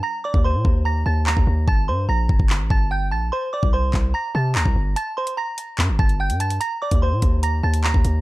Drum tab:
HH |----------------|----------------|----------------|x--x--x----x-xxx|
CP |------------x---|--------x-------|------x-----x---|--------x-------|
BD |---o--o------o--|o-----oo--o-----|---o--o------o--|----------o-----|

HH |x--x--x-x--x--x-|
CP |------------x---|
BD |---o--o------o--|